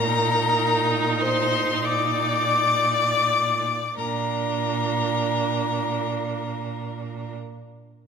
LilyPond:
<<
  \new Staff \with { instrumentName = "Violin" } { \time 6/8 \key bes \major \tempo 4. = 29 bes''4 c'''8 d'''4. | bes''2. | }
  \new Staff \with { instrumentName = "Violin" } { \time 6/8 \key bes \major bes'4 c''8 d''4. | bes'2. | }
  \new Staff \with { instrumentName = "Viola" } { \time 6/8 \key bes \major ees'2. | d'2. | }
  \new Staff \with { instrumentName = "Cello" } { \clef bass \time 6/8 \key bes \major bes,2. | bes,2. | }
>>